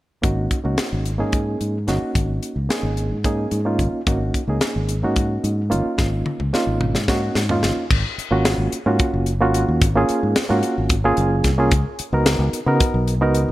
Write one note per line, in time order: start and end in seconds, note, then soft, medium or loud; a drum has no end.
0.22 0.46 G#1 medium
0.22 0.57 A#3 medium
0.22 0.58 C#4 medium
0.22 0.58 D#4 medium
0.22 0.58 F#4 medium
0.22 kick medium
0.22 closed hi-hat medium
0.51 kick medium
0.51 closed hi-hat medium
0.64 0.76 C#2 medium
0.64 1.10 A#3 medium
0.64 1.11 C#4 medium
0.64 1.11 D#4 medium
0.64 1.11 F#4 medium
0.78 snare medium
0.78 closed hi-hat medium
0.93 1.22 G#1 medium
1.05 closed hi-hat medium
1.18 1.54 G#2 medium
1.18 1.76 A#3 medium
1.18 1.77 C#4 medium
1.18 1.77 D#4 medium
1.18 1.77 G#4 medium
1.32 kick medium
1.32 closed hi-hat medium
1.61 1.89 G#2 medium
1.61 closed hi-hat soft
1.87 1.99 G#1 medium
1.87 2.56 A#3 medium
1.87 2.57 C#4 medium
1.87 2.57 D#4 medium
1.87 2.57 F#4 medium
1.87 snare soft
1.87 closed hi-hat soft
2.15 2.38 G#1 medium
2.15 kick medium
2.15 closed hi-hat medium
2.43 closed hi-hat medium
2.56 2.67 C#2 medium
2.69 3.16 A#3 medium
2.69 3.16 C#4 medium
2.69 3.16 D#4 medium
2.69 3.16 G#4 medium
2.69 muted fingered electric bass stroke soft
2.69 snare medium
2.69 closed hi-hat medium
2.83 3.12 G#1 medium
2.97 closed hi-hat medium
3.10 3.45 G#2 medium
3.24 3.59 A#3 medium
3.24 3.59 C#4 medium
3.24 3.59 D#4 medium
3.24 3.60 G#4 medium
3.24 kick medium
3.24 closed hi-hat medium
3.51 3.80 G#2 medium
3.51 closed hi-hat soft
3.65 4.00 A#3 medium
3.65 4.00 C#4 medium
3.65 4.00 D#4 medium
3.65 4.01 F4 medium
3.79 3.90 G#1 medium
3.79 kick medium
3.79 closed hi-hat soft
3.92 muted fingered electric bass stroke soft
4.07 4.30 G#1 medium
4.07 4.42 A#3 medium
4.07 4.42 C#4 medium
4.07 4.42 D#4 medium
4.07 4.42 F#4 medium
4.07 kick medium
4.07 closed hi-hat medium
4.34 kick medium
4.34 closed hi-hat medium
4.48 4.59 C#2 medium
4.48 4.94 A#3 medium
4.48 4.95 C#4 medium
4.48 4.95 D#4 medium
4.48 4.95 G#4 medium
4.61 snare medium
4.61 closed hi-hat medium
4.76 5.04 G#1 medium
4.89 closed hi-hat medium
5.02 5.37 G#2 medium
5.02 5.60 A#3 medium
5.02 5.61 C#4 medium
5.02 5.61 D#4 medium
5.02 5.61 F#4 medium
5.16 kick medium
5.16 closed hi-hat medium
5.44 5.73 G#2 medium
5.44 closed hi-hat medium
5.70 5.83 G#1 medium
5.70 6.40 A#3 medium
5.70 6.40 C#4 medium
5.70 6.40 D#4 medium
5.70 6.40 F4 medium
5.70 closed hi-hat medium
5.98 6.22 G#1 medium
5.98 kick medium
5.98 snare soft
6.26 high tom medium
6.40 6.51 C#2 medium
6.40 high tom soft
6.53 6.99 A#3 medium
6.53 6.99 C#4 medium
6.53 7.00 D#4 medium
6.53 7.00 F4 medium
6.53 snare medium
6.67 6.96 G#1 medium
6.81 mid tom medium
6.94 7.29 G#2 medium
6.94 snare soft
7.08 7.42 A#3 medium
7.08 7.43 C#4 medium
7.08 7.43 D#4 medium
7.08 7.43 F#4 medium
7.08 kick medium
7.08 snare medium
7.35 7.65 G#2 medium
7.35 snare medium
7.49 7.84 A#3 medium
7.49 7.84 C#4 medium
7.49 7.84 D#4 medium
7.49 7.84 F4 medium
7.49 floor tom medium
7.63 7.74 G#1 medium
7.63 snare medium
7.91 8.02 G#1 medium
7.91 kick loud
7.91 crash medium
8.18 muted fingered electric bass stroke soft
8.18 closed hi-hat medium
8.31 8.54 G#1 medium
8.31 8.77 A#3 medium
8.31 8.77 C#4 medium
8.31 8.77 F4 medium
8.31 8.78 F#4 medium
8.45 snare loud
8.45 closed hi-hat medium
8.58 8.69 G#1 medium
8.72 closed hi-hat medium
8.86 8.97 G#2 medium
8.86 9.32 A#3 medium
8.86 9.32 C#4 medium
8.86 9.32 F4 medium
8.86 9.32 F#4 medium
8.99 muted fingered electric bass stroke soft
8.99 kick medium
8.99 closed hi-hat medium
9.14 9.41 F#1 medium
9.26 closed hi-hat medium
9.40 9.63 G#1 loud
9.40 9.86 A#3 medium
9.40 9.87 C#4 medium
9.40 9.87 F4 medium
9.40 9.87 F#4 loud
9.54 closed hi-hat medium
9.68 9.79 D#2 medium
9.81 10.04 G#1 loud
9.81 kick loud
9.81 closed hi-hat medium
9.95 10.41 A#3 medium
9.95 10.41 C#4 medium
9.95 10.41 F4 medium
9.95 10.42 G#4 medium
10.09 muted fingered electric bass stroke soft
10.09 closed hi-hat medium
10.23 10.34 G#2 medium
10.36 muted fingered electric bass stroke soft
10.36 snare loud
10.36 closed hi-hat medium
10.49 10.61 G#2 medium
10.49 10.95 A#3 medium
10.49 10.95 C#4 medium
10.49 10.95 F4 medium
10.49 10.96 F#4 medium
10.63 closed hi-hat medium
10.78 11.11 G#1 medium
10.89 kick loud
10.89 closed hi-hat medium
11.04 11.50 A#3 medium
11.04 11.50 C#4 medium
11.04 11.50 F4 medium
11.04 11.50 G#4 loud
11.17 11.40 F#1 loud
11.17 closed hi-hat medium
11.44 11.72 C2 medium
11.44 kick medium
11.44 snare soft
11.44 closed hi-hat medium
11.58 11.72 A#3 medium
11.58 11.72 C#4 medium
11.58 11.72 F4 medium
11.58 11.73 G#4 medium
11.71 11.83 C#2 loud
11.71 kick loud
11.71 closed hi-hat medium
11.99 muted fingered electric bass stroke soft
11.99 closed hi-hat medium
12.13 12.35 C#2 medium
12.13 12.59 B3 medium
12.13 12.59 D#4 medium
12.13 12.59 F#4 medium
12.13 12.59 A#4 medium
12.26 snare loud
12.26 closed hi-hat medium
12.39 12.51 C#2 medium
12.53 muted fingered electric bass stroke soft
12.53 closed hi-hat medium
12.66 12.78 C#3 medium
12.66 13.13 B3 medium
12.66 13.13 D#4 medium
12.66 13.13 F#4 medium
12.66 13.13 A#4 medium
12.80 kick loud
12.80 closed hi-hat medium
12.94 13.21 B1 medium
13.08 closed hi-hat medium
13.21 13.44 C#2 medium
13.21 13.52 B3 medium
13.21 13.52 D#4 medium
13.21 13.52 F#4 medium
13.21 13.52 A#4 medium
13.35 closed hi-hat medium
13.48 13.52 G#1 medium